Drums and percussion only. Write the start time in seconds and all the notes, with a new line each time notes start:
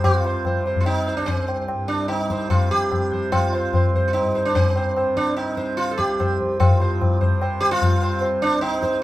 0.04 tabla na, tabla ge
0.24 tabla te
0.45 tabla na, tabla ge
0.66 tabla te
0.76 tabla ge
0.86 tabla na
1.07 tabla te
1.27 tabla tin, tabla ge
1.48 tabla na
1.68 tabla na
1.89 tabla te
2.09 tabla na
2.30 tabla ke
2.50 tabla na, tabla ge
2.71 tabla ge
2.92 tabla na, tabla ge
3.12 tabla ge
3.32 tabla na, tabla ge
3.53 tabla te
3.73 tabla na, tabla ge
3.94 tabla ge
4.14 tabla na
4.35 tabla te
4.55 tabla tin, tabla ge
4.76 tabla na
4.97 tabla na
5.17 tabla ke
5.27 tabla te
5.37 tabla na
5.57 tabla ke
5.78 tabla te
5.88 tabla te
5.99 tabla ke
6.09 tabla te
6.20 tabla na, tabla ge
6.40 tabla ge
6.60 tabla na, tabla ge
6.80 tabla te
7.01 tabla na, tabla ge
7.21 tabla ge
7.42 tabla na
7.62 tabla te
7.82 tabla tin, tabla ge
8.02 tabla na
8.22 tabla na
8.42 tabla te
8.62 tabla na
8.83 tabla ke